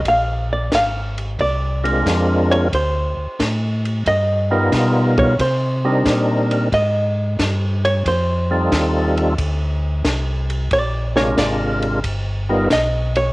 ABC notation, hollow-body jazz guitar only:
X:1
M:4/4
L:1/8
Q:"Swing" 1/4=90
K:Bbmix
V:1 name="Hollow-body jazz guitar"
f d f z d3 _d | c3 z ^d3 _d | c3 z e3 _d | c3 z4 z |
d _d =d z3 ^d _d |]